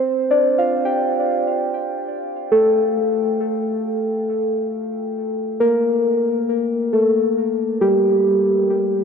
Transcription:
Already playing: C5
0.31 D5
0.58 F5
0.85 G5
2.52 A4
5.60 A#4
6.93 A4
7.81 G4

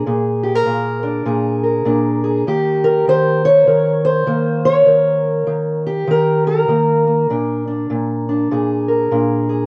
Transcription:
Already playing: A#4
0.06 A#2 G#4
0.43 G4
0.55 A#4
0.66 A#2
1.03 D4
1.26 A#2 G#4
1.63 A#4
1.85 A#2 D4
2.24 G#4
2.47 D#3 A#3 G4
2.84 A#4
3.07 D#3 C5
3.45 C#5
3.67 D#3 A#4
4.05 C5
4.26 D#3 A#3
4.65 C#5
4.86 D#3 A#4
5.47 D#3
5.87 G4
6.08 D#3 A#4
6.47 A#4
6.68 D#3 A#3
7.07 A#3
7.30 A#2 D4
7.67 D4
7.90 A#2
8.29 D4
8.51 A#2 G#4
8.88 A#4
9.11 A#2 D4
9.49 G#4

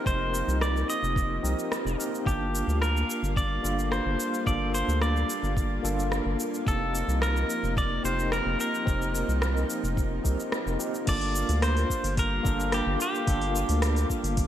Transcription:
Already playing: F3 A#3 C4 D#4 G4 A#4
0.04 F1 C4 D#4 G4 A#4 C5, kick, shaker
0.35 shaker
0.48 C2, shaker
0.61 D5, cross-stick, shaker
0.77 shaker
0.90 D#5, shaker
1.03 F1, shaker
1.16 kick, shaker
1.43 C2 C4 D#4 G4 A#4, shaker
1.59 shaker
1.72 cross-stick, shaker
1.85 F1, shaker
1.98 C4 D#4 G4 A#4, shaker
2.15 shaker
2.25 G1 G3 A#3 D4 F4 G4 A5, kick, shaker
2.55 shaker
2.67 D2, shaker
2.82 A#4, cross-stick, shaker
2.97 shaker
3.10 shaker
3.23 G1, shaker
3.36 D5, kick, shaker
3.62 G1 A#3 D4 F4 A4, shaker
3.79 shaker
3.92 C5, cross-stick, shaker
4.06 G1
4.20 shaker
4.34 shaker
4.44 G1 A#3 D4 F4 A4 D5, kick, shaker
4.74 C5, shaker
4.88 D2, shaker
5.02 D5, cross-stick, shaker
5.17 shaker
5.30 shaker
5.43 G1, shaker
5.57 kick, shaker
5.83 G1 A#3 D4 F4 A4, shaker
5.99 shaker
6.12 cross-stick, shaker
6.26 G1
6.40 shaker
6.54 shaker
6.65 F1 F3 A#3 C4 D#4 G4 A4, kick, shaker
6.95 shaker
7.08 C2, shaker
7.22 A#4, cross-stick, shaker
7.37 shaker
7.50 shaker
7.63 F1, shaker
7.77 D5, kick, shaker
8.03 F1 C4 D#4 G4 A#4 C5, shaker
8.19 shaker
8.32 A#4, cross-stick, shaker
8.46 F1
8.60 A#4, shaker
8.75 shaker
8.85 F1 C4 D#4 G4 A#4, kick, shaker
9.02 shaker
9.15 shaker
9.28 C2, shaker
9.42 cross-stick, shaker
9.57 shaker
9.70 shaker
9.84 F1, shaker
9.97 kick, shaker
10.23 C2 C4 D#4 G4 A#4, kick, shaker
10.40 shaker
10.52 cross-stick, shaker
10.66 F1, shaker
10.79 C4 D#4 G4 A#4, shaker
10.95 shaker
11.05 G1 G3 A#3 D4 F4 A4 D5, kick, open hi-hat, crash, shaker
11.21 open hi-hat
11.36 shaker
11.49 D2, open hi-hat, shaker
11.62 C5, cross-stick, open hi-hat, shaker
11.77 open hi-hat, shaker
11.90 kick, shaker
12.04 G1, open hi-hat, shaker
12.17 A#4, kick, open hi-hat, shaker
12.43 G1 A#3 D4 F4 A4, kick, shaker
12.60 shaker
12.72 G4, cross-stick, open hi-hat, shaker
12.86 G1
13.01 G4, shaker
13.15 shaker
13.25 G1 A#3 D4 F4 A4, kick, open hi-hat, shaker
13.41 open hi-hat
13.56 shaker
13.69 D2, open hi-hat, shaker
13.82 cross-stick, open hi-hat, shaker
13.96 open hi-hat, shaker
14.10 kick, shaker
14.24 G1, open hi-hat, shaker
14.37 kick, open hi-hat, shaker

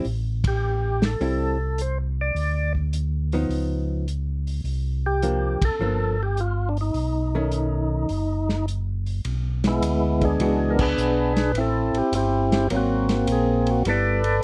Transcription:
0.05 A1, open hi-hat
0.44 G4, kick, ride
1.02 A4, snare, open hi-hat
1.20 C2 G3 C4 E4, open hi-hat
1.78 C5, closed hi-hat
2.21 D5
2.35 D2, open hi-hat
2.75 kick
2.93 closed hi-hat
3.32 F3 B3 D#4, open hi-hat
3.49 C#2, open hi-hat
4.08 closed hi-hat
4.47 open hi-hat
4.64 C2, open hi-hat
5.06 G4
5.22 F3 A#3 D4, closed hi-hat
5.61 C2 A4, kick, ride
5.79 G1 F3 A#3 D4
6.23 G4
6.37 F4, closed hi-hat
6.69 D4
6.77 open hi-hat
6.81 D#4
6.94 B1, open hi-hat
7.35 D#3 A3 C#4
7.52 closed hi-hat
8.09 F#1, open hi-hat
8.49 snare
8.68 closed hi-hat
9.06 open hi-hat
9.25 B1, ride
9.64 G#3 B3, snare, ride
9.68 E4
9.81 D2, hi-hat pedal, ride
10.21 B3 D4 G#4, kick, ride
10.39 C#2 E3 G#3 D4 F#4, ride
10.70 A#4
10.79 D4 G#4 B4, kick, crash
10.97 B1, hi-hat pedal
11.36 snare, ride
11.54 A1 C4 E4, ride
11.61 A4
11.93 A1, ride
11.97 G4
12.12 G1 C4 E4, hi-hat pedal, ride
12.17 G4
12.52 snare, ride
12.70 G#1 F#3 A#3 C4, ride
12.75 A#3 C4 F#4
13.09 snare, ride
13.27 A#1, hi-hat pedal, ride
13.32 G#4
13.67 ride
13.71 F#4
13.85 G1 G3 B3 E4 A4, ride
13.89 A4 B4 D5
14.24 ride

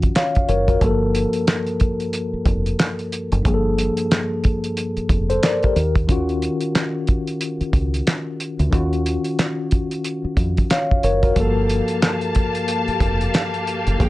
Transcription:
Already playing: D#3 C#4 F4 F#4
0.02 kick, closed hi-hat
0.15 C#5 F5, snare, clap, closed hi-hat
0.35 kick, closed hi-hat
0.49 F#1 A#4 C#5, closed hi-hat
0.68 F#4 A#4, kick, closed hi-hat
0.80 G1 G2 F3 A#3, kick, closed hi-hat
0.85 A4
1.15 closed hi-hat
1.33 closed hi-hat
1.47 snare, clap, closed hi-hat
1.67 closed hi-hat
1.80 kick, closed hi-hat
2.00 closed hi-hat
2.13 closed hi-hat
2.33 muted fingered electric bass stroke
2.45 F1, kick, closed hi-hat
2.66 closed hi-hat
2.79 snare, clap, closed hi-hat
2.99 closed hi-hat
3.12 closed hi-hat
3.32 F#1, closed hi-hat
3.43 G1 G2 F3 A#3, kick, closed hi-hat
3.48 G#4
3.54 A4
3.78 closed hi-hat
3.97 closed hi-hat
4.11 snare, clap, closed hi-hat
4.44 kick, closed hi-hat
4.64 closed hi-hat
4.77 closed hi-hat
4.97 muted fingered electric bass stroke, closed hi-hat
5.09 F1, kick, closed hi-hat
5.30 A4 C5, closed hi-hat
5.43 A#4 D5, snare, clap, closed hi-hat
5.63 G4 A#4, kick, closed hi-hat
5.76 D#2, closed hi-hat
5.95 kick, closed hi-hat
6.07 D#3 C#4 F4, kick, closed hi-hat
6.12 F#4
6.29 closed hi-hat
6.42 closed hi-hat
6.61 closed hi-hat
6.75 snare, clap, closed hi-hat
7.07 kick, closed hi-hat
7.27 closed hi-hat
7.41 closed hi-hat
7.61 muted fingered electric bass stroke, closed hi-hat
7.73 C#2, kick, closed hi-hat
7.94 closed hi-hat
8.07 snare, clap, closed hi-hat
8.40 closed hi-hat
8.59 D2, closed hi-hat
8.70 D#2 D#3 C#4 F4, kick, closed hi-hat
8.75 F#4
8.93 closed hi-hat
9.06 closed hi-hat
9.24 closed hi-hat
9.39 snare, clap, closed hi-hat
9.71 kick, closed hi-hat
9.91 closed hi-hat
10.04 closed hi-hat
10.24 muted fingered electric bass stroke
10.37 F2, kick, closed hi-hat
10.57 kick, closed hi-hat
10.70 C#5 F5, snare, clap, closed hi-hat
10.91 kick
11.03 F#1 A#4 C#5, closed hi-hat
11.23 F#4 A#4, kick, closed hi-hat
11.35 G1 G2 F3 A#3 G4 F5 A5, kick, closed hi-hat
11.40 A4
11.69 closed hi-hat
11.88 closed hi-hat
12.02 snare, clap, closed hi-hat
12.21 closed hi-hat
12.35 kick, closed hi-hat
12.55 closed hi-hat
12.68 closed hi-hat
12.88 muted fingered electric bass stroke, closed hi-hat
13.00 F1, kick, closed hi-hat
13.21 closed hi-hat
13.34 snare, clap, closed hi-hat
13.54 closed hi-hat
13.67 closed hi-hat
13.87 F#1, closed hi-hat
13.98 G1 G2 F3 A#3, kick, closed hi-hat
14.02 G#4 G5

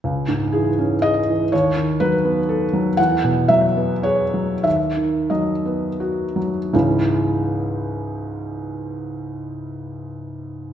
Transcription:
0.04 C#2
0.28 G#2
0.52 E3 G#4
0.79 C#4
1.02 G#4 D#5
1.28 E3
1.52 D#2 C#5
1.77 D#3
2.00 F#3 B4
2.24 B3
2.49 A4
2.73 F#3
2.97 E2 F#5
3.24 B2
3.48 F#3 E5
3.77 B3
4.03 G#4 C#5
4.34 F#3
4.63 D#2 E5
4.97 D#3
5.30 F#3 D#5
5.65 B3
6.00 F#4
6.36 F#3
6.73 C#2 G#2 E3 G#3 C#4 E4

